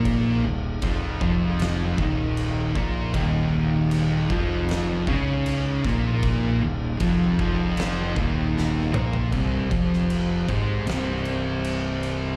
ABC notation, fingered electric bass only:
X:1
M:4/4
L:1/8
Q:1/4=78
K:Ebmix
V:1 name="Fingered electric bass" clef=bass
B,,, E,,, F,,, F,,,2 E,,,2 B,,, | E,,,3 F,,,2 D,,2 B,,,- | B,,, E,,, F,,, F,,,2 E,,,2 B,,, | C,,, F,,,2 A,,, C,,,4 |]